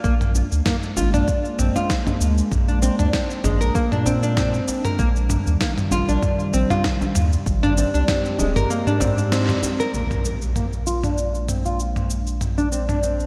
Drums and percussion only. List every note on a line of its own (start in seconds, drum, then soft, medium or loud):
0.04 kick loud
0.04 shaker soft
0.21 mid tom medium
0.21 shaker soft
0.35 djembe tone medium
0.35 shaker medium
0.52 shaker soft
0.66 kick medium
0.66 snare loud
0.66 mid tom medium
0.66 shaker soft
0.83 shaker soft
0.97 djembe tone medium
0.97 djembe bass medium
0.97 shaker medium
1.14 mid tom medium
1.14 shaker soft
1.28 kick loud
1.28 shaker soft
1.45 shaker soft
1.59 mid tom medium
1.59 shaker medium
1.76 djembe slap soft
1.76 djembe tone medium
1.76 shaker soft
1.90 kick loud
1.90 snare loud
1.90 djembe slap soft
1.90 shaker soft
2.07 mid tom medium
2.07 djembe bass medium
2.07 shaker soft
2.21 shaker medium
2.38 shaker soft
2.52 kick medium
2.52 mid tom medium
2.52 shaker soft
2.69 shaker soft
2.82 djembe tone medium
2.82 shaker medium
2.99 mid tom medium
2.99 shaker soft
3.13 kick medium
3.13 snare medium
3.13 shaker soft
3.30 shaker soft
3.44 mid tom medium
3.44 djembe tone medium
3.44 djembe bass medium
3.44 shaker medium
3.61 shaker soft
3.75 kick loud
3.75 shaker soft
3.92 mid tom medium
3.92 shaker soft
4.06 djembe slap soft
4.06 djembe tone medium
4.06 djembe bass medium
4.06 shaker medium
4.23 shaker soft
4.37 kick loud
4.37 snare loud
4.37 mid tom medium
4.37 shaker soft
4.54 shaker soft
4.68 djembe slap soft
4.68 djembe tone medium
4.68 shaker medium
4.85 mid tom medium
4.85 shaker soft
4.99 kick loud
4.99 shaker soft
5.16 shaker soft
5.29 mid tom medium
5.29 djembe tone medium
5.29 shaker medium
5.47 shaker soft
5.61 kick medium
5.61 snare loud
5.61 shaker soft
5.78 mid tom medium
5.78 shaker soft
5.91 djembe tone medium
5.91 djembe bass medium
5.91 shaker medium
6.09 shaker soft
6.23 kick medium
6.23 mid tom medium
6.23 shaker soft
6.40 shaker soft
6.54 shaker medium
6.70 mid tom medium
6.70 djembe slap medium
6.70 djembe tone medium
6.70 shaker soft
6.84 kick loud
6.84 snare loud
6.84 djembe slap soft
6.84 shaker soft
7.01 djembe bass medium
7.01 shaker soft
7.15 mid tom medium
7.15 shaker medium
7.33 shaker soft
7.46 kick medium
7.46 shaker soft
7.63 mid tom medium
7.63 shaker soft
7.78 djembe tone medium
7.78 shaker medium
7.95 shaker soft
8.08 kick medium
8.08 snare loud
8.08 mid tom medium
8.08 shaker soft
8.25 shaker soft
8.39 djembe tone medium
8.39 djembe bass medium
8.39 shaker medium
8.56 mid tom medium
8.56 shaker soft
8.71 shaker soft
8.87 shaker soft
9.00 mid tom medium
9.00 djembe slap medium
9.00 djembe tone medium
9.00 djembe bass medium
9.00 shaker medium
9.18 shaker soft
9.32 snare loud
9.32 shaker soft
9.49 mid tom medium
9.49 shaker soft
9.63 djembe slap soft
9.63 djembe tone medium
9.63 shaker medium
9.80 shaker soft
9.94 shaker soft
10.11 mid tom medium
10.11 shaker soft
10.25 shaker medium
10.42 shaker soft
10.56 mid tom medium
10.56 shaker soft
10.73 shaker soft
10.87 shaker medium
11.03 mid tom medium
11.03 shaker soft
11.18 shaker soft
11.35 shaker soft
11.48 mid tom medium
11.48 shaker medium
11.66 shaker soft
11.80 shaker soft
11.96 mid tom medium
11.96 shaker soft
12.10 shaker medium
12.27 shaker soft
12.41 mid tom medium
12.41 shaker soft
12.58 shaker soft
12.72 shaker medium
12.89 mid tom medium
12.89 shaker soft
13.03 shaker soft
13.20 shaker soft